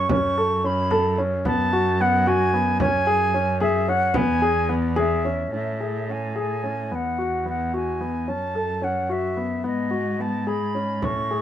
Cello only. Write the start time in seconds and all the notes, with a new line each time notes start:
Already playing: F#2
0.10 F#2
1.45 F#2
2.80 F#2
4.15 E2
5.53 A2
6.91 E2
8.28 F#2
9.64 G#2
11.03 A2